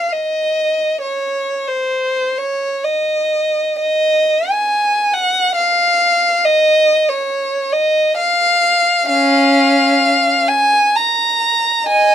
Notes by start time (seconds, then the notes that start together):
Already playing: F5
0.12 D#5
1.02 C#5
1.68 C5
2.38 C#5
2.84 D#5
3.79 D#5
4.50 G#5
5.14 F#5
5.55 F5
6.45 D#5
7.09 C#5
7.73 D#5
8.17 F5
9.08 C#4 F5
10.48 G#5
10.97 A#5
11.88 D#5 G#5